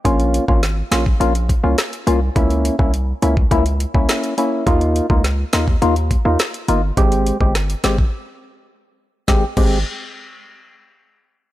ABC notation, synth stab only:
X:1
M:4/4
L:1/16
Q:1/4=104
K:Ab
V:1 name="Synth stab"
[B,DF]3 [B,DF] z2 [B,DF] z [B,DF] z2 [B,DF] z2 [B,DF] z | [B,D_F]3 [B,DF] z2 [B,DF] z [B,DF] z2 [B,DF]3 [B,DF]2 | [B,EF]3 [B,EF] z2 [B,EF] z [B,EF] z2 [B,EF] z2 [B,EF] z | [A,CG]3 [A,CG] z2 [A,CG] z8 z |
[A,CG] z [A,CG]2 z12 |]